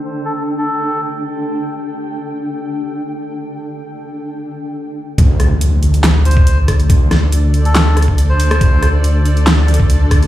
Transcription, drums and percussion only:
5.18 kick, closed hi-hat
5.40 cross-stick, closed hi-hat
5.61 closed hi-hat
5.83 closed hi-hat
5.94 closed hi-hat
6.04 snare, clap, closed hi-hat
6.25 closed hi-hat
6.31 closed hi-hat
6.37 kick
6.47 closed hi-hat
6.68 kick, cross-stick, open hi-hat
6.80 closed hi-hat
6.90 kick, closed hi-hat
7.11 cross-stick, snare, closed hi-hat
7.32 closed hi-hat
7.54 closed hi-hat
7.65 closed hi-hat
7.75 snare, clap, closed hi-hat
7.97 cross-stick, closed hi-hat
8.02 closed hi-hat
8.08 kick
8.18 closed hi-hat
8.40 open hi-hat
8.51 cross-stick, closed hi-hat
8.61 kick, closed hi-hat
8.83 cross-stick, closed hi-hat
9.04 closed hi-hat
9.26 closed hi-hat
9.37 closed hi-hat
9.47 snare, clap, closed hi-hat
9.68 closed hi-hat
9.74 closed hi-hat
9.80 kick
9.90 closed hi-hat
10.11 kick, cross-stick, open hi-hat
10.22 closed hi-hat

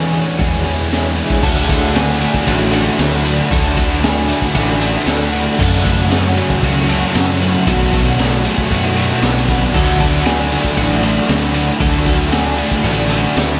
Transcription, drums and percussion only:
0.13 open hi-hat
0.39 kick, open hi-hat
0.66 open hi-hat
0.92 snare, open hi-hat
1.18 open hi-hat
1.30 kick
1.43 kick, crash
1.69 kick, ride
1.95 snare, ride
2.21 ride
2.34 kick
2.47 kick, ride
2.73 ride
2.99 snare, ride
3.25 ride
3.51 kick, ride
3.77 kick, ride
4.03 snare, ride
4.30 ride
4.42 kick
4.55 kick, ride
4.81 ride
5.07 snare, ride
5.33 ride
5.59 kick, crash
5.85 kick, ride
6.11 snare, ride
6.37 ride
6.50 kick
6.63 kick, ride
6.89 ride
7.15 snare, ride
7.42 snare, ride
7.67 kick, ride
7.93 kick, ride
8.19 snare, ride
8.45 ride
8.58 kick
8.71 kick, ride
8.97 ride
9.22 snare, ride
9.48 kick, snare, ride
9.74 kick, crash
10.00 kick, ride
10.25 snare, ride
10.52 ride
10.64 kick
10.77 kick, ride
11.03 ride
11.29 snare, ride
11.54 ride
11.80 kick, ride
12.06 kick, ride
12.32 snare, ride
12.58 ride
12.71 kick
12.84 kick, ride
13.10 ride
13.37 snare, ride

